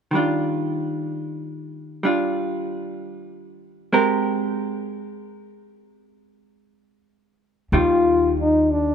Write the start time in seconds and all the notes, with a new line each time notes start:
0.11 D#3 G3 D4
0.16 F4
2.03 G3 D4 F4
3.93 G#3 C4 G4 A#4
7.72 D#2 D#3 G3 F4
8.40 D#4
8.71 D4